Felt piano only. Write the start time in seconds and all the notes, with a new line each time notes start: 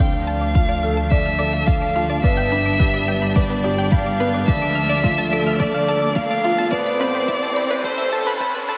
0.00 D4
0.55 F4
0.83 A4
1.11 D5
1.39 A4
1.95 F4
2.24 B3
2.52 D4
2.80 G4
3.36 B4
3.64 G4
3.92 D4
4.20 B3
4.48 D4
5.05 F4
5.32 A4
5.60 D5
5.88 A4
6.44 F4
6.72 B3
7.00 C4
7.28 E4
7.84 A4
8.12 A4
8.40 C4
8.69 A4